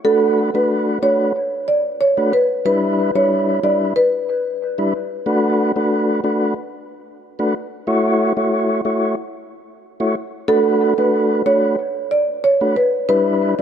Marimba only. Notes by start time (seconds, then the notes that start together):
0.05 A4
0.55 B4
1.03 C#5
1.68 D5
2.01 C#5
2.33 B4
2.66 B4
3.16 C#5
3.63 D5
3.96 B4
10.48 A4
10.98 B4
11.46 C#5
12.11 D5
12.44 C#5
12.76 B4
13.09 B4
13.59 D5